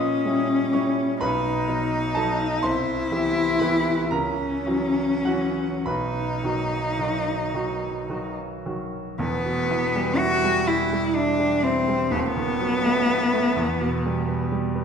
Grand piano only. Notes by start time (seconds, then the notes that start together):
Already playing: A#2 D#5 D#6
0.25 G3 C#4 E4
0.73 G3 C#4 E4 C#5 C#6
1.21 B1 B4 B5
1.67 F#3 B3 D#4
2.15 F#3 B3 D#4 A4 A5
2.62 C2 C5 C6
3.11 E3 B3 G4
3.59 E3 B3 G4 B4 B5
4.11 C#2 A#4 A#5
4.66 E3 F#3 F#4
5.25 E3 F#3 F#4 F#5
5.86 B1 B4 B5
6.43 D#3 F#3 F#4
6.99 D#3 F#3 F#4
7.54 D#3 F#3 F#4
8.10 D#3 F#3 F#4
8.66 D#3 F#3 F#4
9.18 E1 E2
9.45 B2
9.70 E3
9.95 G3
10.20 E4
10.44 G3
10.68 E4
10.93 G3
11.15 E4
11.39 G3
11.63 E4
11.88 G3
12.11 D#1 D#2
12.37 D#3
12.60 F#3
12.84 A3
13.08 B3
13.34 A3
13.56 E2
13.80 B2
14.06 G3
14.28 B3
14.52 G3
14.75 B3